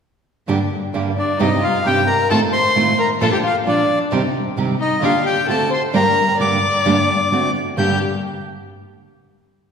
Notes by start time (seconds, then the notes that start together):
0.47 G2 D3 G3 A#3 D4 G4
0.93 G2 D3 G3 A#3 D4 G4
1.17 D4 D5
1.39 G2 C3 G3 C4 D#4 G4 D#5
1.62 F4 F5
1.84 G2 C3 G3 C4 D#4 G4 G5
2.07 A#4 A#5
2.29 A2 D#3 A3 C4 D#4 F4 A4 A5
2.53 C5 C6
2.75 A2 D#3 A3 C4 D#4 F4
2.99 A#4 A#5
3.20 A#2 F3 A#3 D4 F4 A4 A5
3.32 G4 G5
3.43 F4 F5
3.65 A#2 F3 A#3 D4 F4 D5
4.11 C3 D#3 G3 C4 D#4 G4
4.56 C3 D#3 G3 C4 D#4 G4
4.80 D#4 D#5
5.02 D3 A#3 D4 F4 G4 F5
5.25 G4 G5
5.47 D3 A3 C4 D4 F#4 A4 A5
5.70 C5 C6
5.92 G2 D3 G3 A#3 D4 G4 A#4 A#5
6.38 G2 D3 G3 A#3 D4 G4 D5 D6
6.84 G2 D3 G3 A#3 D4 G4
7.31 D3 A3 C4 D4 F#4
7.77 G2 D3 G3 A#3 D4 G4 G6